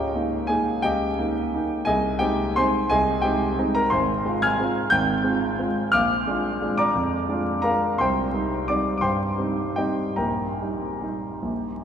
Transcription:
0.00 0.15 C#2 soft
0.00 0.47 G4 medium
0.00 0.46 D#5 medium
0.00 0.50 G5 medium
0.15 0.46 A#3 soft
0.15 0.46 D#4 soft
0.47 0.81 A#3 soft
0.47 0.81 D#4 soft
0.47 0.82 G#4 medium
0.47 0.83 G#5 medium
0.82 1.17 C#2 medium
0.82 1.82 G4 medium
0.82 1.82 D#5 medium
0.82 1.85 G5 medium
1.18 1.50 A#3 soft
1.18 1.50 D#4 soft
1.54 1.84 A#3 soft
1.54 1.84 D#4 soft
1.85 2.20 C2 medium
1.85 2.18 G#4 medium
1.85 2.18 D#5 medium
1.85 2.20 G#5 medium
2.19 2.52 G#3 soft
2.19 2.53 C4 soft
2.19 2.53 D#4 soft
2.19 2.53 G4 medium
2.19 2.55 G5 medium
2.56 2.87 G#3 soft
2.56 2.87 C4 soft
2.56 2.88 D#4 medium
2.56 2.88 C5 medium
2.56 2.88 G#5 medium
2.56 2.90 C6 medium
2.89 3.22 C2 medium
2.89 3.21 G#4 medium
2.89 3.21 D#5 medium
2.89 3.23 G#5 medium
3.22 3.55 G#3 soft
3.22 3.55 C4 soft
3.22 3.55 D#4 medium
3.22 3.56 G4 medium
3.22 3.57 G5 medium
3.58 3.89 G#3 soft
3.58 3.89 C4 soft
3.58 3.89 D#4 medium
3.75 3.91 A#4 medium
3.75 3.92 A#5 medium
3.90 4.24 G#1 medium
3.90 4.39 C5 medium
3.90 4.38 G#5 medium
3.90 4.42 C6 medium
4.25 4.56 G#3 soft
4.25 4.56 C4 soft
4.25 4.56 F4 medium
4.42 4.89 G#5 medium
4.42 4.89 F6 medium
4.42 4.92 G#6 medium
4.60 4.89 G#3 soft
4.60 4.89 C4 soft
4.60 4.89 F4 soft
4.90 5.24 G#1 medium
4.90 5.90 G5 medium
4.90 5.93 G6 medium
5.24 5.56 G#3 soft
5.24 5.56 C4 soft
5.24 5.56 F4 medium
5.59 5.90 G#3 soft
5.59 5.90 C4 soft
5.59 5.91 F4 medium
5.92 6.27 A#1 medium
5.92 6.75 F5 medium
5.92 6.75 D6 medium
5.92 6.79 F6 medium
6.27 6.59 G#3 soft
6.27 6.59 D4 soft
6.27 6.60 F4 soft
6.62 6.92 G#3 soft
6.62 6.92 D4 soft
6.62 6.93 F4 soft
6.78 7.61 D5 medium
6.78 7.60 A#5 medium
6.78 7.64 D6 medium
6.95 7.28 F2 medium
7.29 7.61 G#3 soft
7.29 7.62 D4 soft
7.29 7.62 F4 soft
7.62 7.96 G#3 soft
7.62 7.96 D4 soft
7.62 7.97 F4 soft
7.62 7.97 A#4 medium
7.62 7.97 F5 medium
7.62 7.99 A#5 medium
7.98 8.34 C2 medium
7.98 8.66 C5 medium
7.98 8.67 G5 medium
7.98 8.70 C6 medium
8.33 8.66 G3 soft
8.33 8.66 C4 soft
8.33 8.67 D#4 soft
8.68 9.01 G3 soft
8.68 9.01 C4 soft
8.68 9.01 D#4 soft
8.68 8.95 D5 medium
8.68 8.96 D6 medium
8.98 9.76 C6 medium
8.98 9.04 D6 medium
9.02 9.37 G2 soft
9.02 9.73 C5 medium
9.02 9.73 G5 medium
9.38 9.73 G3 soft
9.38 9.74 C4 soft
9.38 9.74 D#4 soft
9.76 10.14 G3 soft
9.76 10.14 C4 soft
9.76 10.15 D#4 soft
9.76 10.15 G4 soft
9.76 10.15 D#5 soft
9.76 10.16 G5 medium
10.16 10.59 A#1 soft
10.16 11.84 A#4 soft
10.16 11.84 G5 soft
10.16 11.84 A#5 medium
10.61 10.99 G3 soft
10.61 10.99 D#4 soft
11.01 11.39 G3 soft
11.01 11.39 D#4 soft
11.42 11.82 A#1 soft

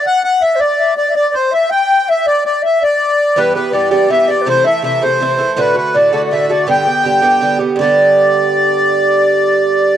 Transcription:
0.04 0.22 F#5 medium
0.04 0.22 F#5 loud
0.23 0.44 F#5 medium
0.23 0.43 F#5 loud
0.41 0.61 E5 medium
0.41 0.57 E5 medium
0.55 0.61 C5 medium
0.60 0.78 D5 medium
0.60 0.94 D5 loud
0.79 0.96 E5 medium
0.97 1.09 D5 medium
0.97 1.14 D5 loud
1.09 1.16 E5 medium
1.15 1.33 D5 medium
1.15 1.35 D5 loud
1.33 1.53 C5 medium
1.33 1.53 C5 loud
1.51 1.72 E5 medium
1.51 1.70 E5 medium
1.70 2.10 G5 loud
1.70 2.09 G5 loud
2.08 2.28 E5 medium
2.08 2.26 E5 loud
2.26 2.44 D5 medium
2.26 2.44 D5 loud
2.45 2.64 D5 medium
2.45 2.62 D5 loud
2.62 2.81 E5 medium
2.62 2.83 E5 medium
2.82 3.39 D5 medium
2.82 3.39 D5 loud
3.36 3.55 G2 medium
3.36 3.55 E3 medium
3.36 3.55 B3 medium
3.36 3.54 G4 medium
3.36 3.54 B4 medium
3.36 3.53 B4 loud
3.55 3.72 E3 soft
3.55 3.73 B3 medium
3.55 3.73 G4 medium
3.55 3.72 B4 medium
3.73 3.91 G2 medium
3.73 3.90 E3 medium
3.73 3.90 B3 medium
3.73 3.90 G4 medium
3.73 3.89 D5 medium
3.73 3.91 D5 medium
3.91 4.07 G2 medium
3.91 4.08 E3 medium
3.91 4.09 B3 medium
3.91 4.09 G4 medium
3.91 4.09 D5 medium
3.91 4.12 D5 medium
4.09 4.28 G2 medium
4.09 4.29 E3 medium
4.09 4.28 B3 medium
4.09 4.27 G4 medium
4.09 4.30 E5 medium
4.09 4.29 E5 medium
4.28 4.45 E3 soft
4.28 4.47 B3 soft
4.28 4.47 G4 medium
4.28 4.43 D5 medium
4.28 4.48 D5 medium
4.42 4.47 B4 medium
4.46 4.65 C3 medium
4.46 4.66 E3 medium
4.46 4.65 A3 medium
4.46 4.63 E4 loud
4.46 4.66 C5 medium
4.46 4.65 C5 loud
4.64 4.83 E3 soft
4.64 4.83 A3 medium
4.64 4.83 E4 medium
4.64 4.83 E5 medium
4.64 4.83 E5 loud
4.82 5.02 C3 medium
4.82 5.02 E3 medium
4.82 5.01 A3 medium
4.82 5.00 E4 medium
4.82 5.01 E5 medium
4.82 5.03 E5 loud
5.02 5.19 C3 medium
5.02 5.20 E3 medium
5.02 5.20 A3 medium
5.02 5.21 E4 medium
5.02 5.33 C5 medium
5.02 5.60 C5 loud
5.20 5.39 C3 medium
5.20 5.39 E3 medium
5.20 5.38 A3 medium
5.20 5.37 E4 medium
5.39 5.57 E3 soft
5.39 5.56 A3 medium
5.39 5.57 E4 medium
5.57 5.76 A2 medium
5.57 5.76 D3 medium
5.57 5.75 A3 medium
5.57 5.73 F#4 loud
5.57 5.76 B4 medium
5.75 5.94 D3 soft
5.75 5.94 A3 soft
5.75 5.94 F#4 medium
5.75 5.96 B4 medium
5.94 6.13 A2 medium
5.94 6.13 D3 medium
5.94 6.12 A3 medium
5.94 6.11 F#4 medium
5.94 6.12 D5 medium
6.13 6.30 A2 medium
6.13 6.31 D3 medium
6.13 6.31 A3 medium
6.13 6.32 F#4 medium
6.13 6.25 D5 medium
6.13 6.22 D5 loud
6.26 6.37 D5 medium
6.31 6.50 A2 medium
6.31 6.50 D3 medium
6.31 6.49 A3 medium
6.31 6.48 F#4 medium
6.31 6.51 E5 medium
6.38 6.49 D5 medium
6.49 6.66 D3 soft
6.49 6.67 A3 medium
6.49 6.68 F#4 medium
6.49 6.67 D5 medium
6.49 6.68 D5 medium
6.67 6.86 G2 medium
6.67 6.87 D3 medium
6.67 6.86 B3 medium
6.67 6.85 G4 medium
6.67 7.57 G5 medium
6.67 7.58 G5 loud
6.86 7.04 D3 soft
6.86 7.04 B3 medium
6.86 7.05 G4 medium
7.04 7.23 G2 medium
7.04 7.22 D3 medium
7.04 7.22 B3 medium
7.04 7.21 G4 medium
7.22 7.40 G2 medium
7.22 7.40 D3 medium
7.22 7.41 B3 medium
7.22 7.42 G4 medium
7.41 7.60 G2 medium
7.41 7.60 D3 medium
7.41 7.59 B3 medium
7.41 7.58 G4 medium
7.59 7.78 D3 soft
7.59 7.79 B3 medium
7.59 7.78 G4 medium
7.76 9.97 G2 medium
7.76 9.97 D3 medium
7.76 9.97 D5 loud
7.80 9.97 B3 medium
7.80 9.97 G4 medium
7.80 9.97 D5 loud

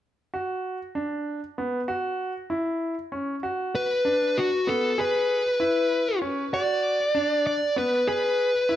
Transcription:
0.34 0.77 F#4 medium
0.95 1.39 D4 medium
1.58 1.80 B3 medium
1.88 2.32 F#4 medium
2.50 2.94 E4 medium
3.12 3.34 C#4 medium
3.43 3.87 F#4 medium
3.75 4.38 B4 medium
4.05 4.49 D4 medium
4.37 4.69 F#4 medium
4.67 4.89 B3 medium
4.67 5.00 A4 medium
4.98 5.42 G#4 medium
4.98 6.19 B4 medium
5.60 6.03 E4 medium
6.22 6.43 C#4 medium
6.53 6.96 F#4 medium
6.53 7.45 D5 medium
7.15 7.58 D4 medium
7.47 7.75 D5 medium
7.76 7.98 B3 medium
7.76 8.07 B4 medium
8.07 8.51 G#4 medium
8.07 8.76 B4 medium
8.69 8.76 E4 medium

